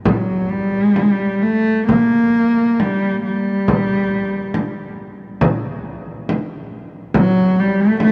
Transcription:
0.05 0.12 F#3 medium
0.05 frame drum medium
0.10 0.18 G3 medium
0.17 0.51 F#3 medium
0.50 1.44 G3 medium
0.96 frame drum soft
1.42 1.87 A3 medium
1.87 2.82 A#3 medium
1.87 frame drum medium
2.80 3.24 G3 medium
2.80 frame drum soft
3.24 4.94 G3 medium
3.68 frame drum medium
4.54 frame drum soft
5.41 frame drum medium
6.29 frame drum medium
7.14 7.61 F#3 loud
7.14 frame drum medium
7.59 7.82 G3 medium
7.81 7.99 A3 medium
8.00 8.12 A3 medium
8.00 frame drum soft

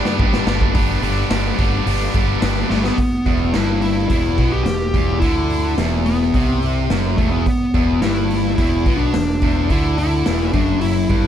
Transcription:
0.00 0.18 G2 medium
0.00 0.18 D3 medium
0.00 0.18 G3 medium
0.00 0.19 B3 medium
0.00 0.19 D4 medium
0.00 0.20 G4 medium
0.00 0.16 D5 medium
0.05 snare medium
0.19 0.38 G1 medium
0.19 0.45 G2 medium
0.19 0.46 D3 medium
0.19 0.46 G3 loud
0.19 0.47 B3 loud
0.19 0.47 D4 medium
0.19 0.48 G4 medium
0.19 kick loud
0.33 snare medium
0.46 0.75 G1 medium
0.46 0.73 G2 medium
0.46 0.73 D3 medium
0.46 0.74 G3 medium
0.46 0.74 B3 medium
0.46 0.74 D4 medium
0.46 0.74 G4 medium
0.46 snare loud
0.61 kick medium
0.74 0.95 G1 medium
0.74 1.01 G2 medium
0.74 1.01 D3 loud
0.74 1.02 G3 loud
0.74 1.02 B3 medium
0.74 1.02 D4 medium
0.74 1.03 G4 loud
0.74 kick loud
0.74 open hi-hat medium
1.02 1.23 G1 medium
1.02 1.28 G2 medium
1.02 1.29 D3 medium
1.02 1.29 G3 medium
1.02 1.30 B3 medium
1.02 1.30 D4 medium
1.02 1.31 G4 medium
1.02 open hi-hat medium
1.29 1.51 G1 medium
1.29 1.56 G2 medium
1.29 1.57 D3 medium
1.29 1.57 G3 medium
1.29 1.58 B3 loud
1.29 1.58 D4 medium
1.29 1.58 G4 loud
1.29 snare loud
1.29 open hi-hat medium
1.58 1.79 G1 medium
1.58 1.84 G2 medium
1.58 1.85 D3 medium
1.58 1.86 G3 medium
1.58 1.86 B3 medium
1.58 1.86 D4 medium
1.58 1.87 G4 loud
1.58 kick medium
1.58 open hi-hat medium
1.85 2.07 G1 medium
1.85 2.11 G2 medium
1.85 2.12 D3 medium
1.85 2.12 G3 medium
1.85 2.13 B3 medium
1.85 2.13 D4 medium
1.85 2.14 G4 medium
1.85 open hi-hat medium
2.12 2.35 G1 medium
2.12 2.39 G2 medium
2.12 2.40 D3 medium
2.12 2.40 G3 medium
2.12 2.41 B3 medium
2.12 2.41 D4 medium
2.12 2.42 G4 medium
2.12 kick medium
2.12 open hi-hat medium
2.40 2.62 G1 medium
2.40 2.67 G2 medium
2.40 2.68 D3 medium
2.40 2.68 G3 medium
2.40 2.69 B3 medium
2.40 2.69 D4 medium
2.40 2.70 G4 loud
2.40 snare loud
2.40 open hi-hat medium
2.69 2.90 G1 medium
2.69 2.96 G2 medium
2.69 2.96 D3 medium
2.69 2.96 G3 medium
2.69 2.84 A3 medium
2.69 2.96 B3 medium
2.69 2.97 D4 medium
2.69 2.97 G4 medium
2.69 snare medium
2.84 3.56 B3 medium
2.84 snare medium
2.98 kick medium
2.98 open hi-hat medium
3.26 3.52 E1 medium
3.26 3.53 E2 medium
3.26 kick medium
3.26 open hi-hat soft
3.53 4.06 G1 medium
3.53 4.09 G2 medium
3.53 3.79 E4 medium
3.53 snare medium
3.53 open hi-hat medium
3.82 4.07 E4 medium
3.82 open hi-hat soft
4.09 4.36 E1 medium
4.09 4.37 E2 medium
4.09 4.52 E4 medium
4.09 kick medium
4.09 open hi-hat medium
4.38 4.64 B1 medium
4.38 4.65 B2 medium
4.38 kick medium
4.38 open hi-hat soft
4.52 4.63 G4 medium
4.64 4.92 E1 medium
4.64 4.88 E2 medium
4.64 5.17 G4 medium
4.64 snare medium
4.64 open hi-hat medium
4.94 5.20 E1 medium
4.94 5.21 E2 medium
4.94 kick medium
4.94 open hi-hat soft
5.20 5.74 D2 medium
5.20 5.77 D3 medium
5.20 5.73 E4 medium
5.20 kick medium
5.20 open hi-hat medium
5.50 open hi-hat soft
5.77 6.30 E1 medium
5.77 6.33 E2 medium
5.77 snare medium
5.77 open hi-hat medium
6.06 6.58 B3 medium
6.06 open hi-hat soft
6.34 6.86 C2 medium
6.34 6.90 C3 medium
6.34 kick medium
6.34 open hi-hat medium
6.62 open hi-hat soft
6.89 7.16 F#1 medium
6.89 7.18 F#2 medium
6.89 snare medium
6.89 open hi-hat medium
7.17 7.44 E1 medium
7.17 7.46 E2 medium
7.17 7.30 A3 medium
7.17 kick medium
7.17 open hi-hat soft
7.31 8.04 B3 medium
7.46 kick medium
7.46 open hi-hat medium
7.74 8.00 E1 medium
7.74 8.01 E2 medium
7.74 kick medium
7.74 open hi-hat soft
8.01 8.54 G1 medium
8.01 8.57 G2 medium
8.01 8.55 E4 medium
8.01 snare medium
8.01 open hi-hat medium
8.31 open hi-hat soft
8.56 8.84 E1 medium
8.56 8.85 E2 medium
8.56 8.97 E4 medium
8.56 kick medium
8.56 open hi-hat medium
8.86 9.12 B1 medium
8.86 9.14 B2 medium
8.86 kick medium
8.86 open hi-hat soft
8.98 9.71 D4 medium
9.14 9.40 E1 medium
9.14 9.37 E2 medium
9.14 snare medium
9.14 open hi-hat medium
9.42 9.68 E1 medium
9.42 9.69 E2 medium
9.42 kick medium
9.42 open hi-hat soft
9.70 10.22 D2 medium
9.70 10.25 D3 medium
9.70 9.98 E4 medium
9.70 kick medium
9.70 open hi-hat medium
9.98 10.51 E4 medium
9.98 open hi-hat soft
10.26 10.52 E1 medium
10.26 10.53 E2 medium
10.26 snare loud
10.26 open hi-hat medium
10.53 11.06 F#1 medium
10.53 11.09 F#2 medium
10.53 10.81 D4 medium
10.53 kick medium
10.53 open hi-hat soft
10.81 11.27 E4 medium
10.81 open hi-hat medium
11.09 11.27 G1 medium
11.09 11.27 G2 medium
11.09 kick medium
11.09 open hi-hat soft

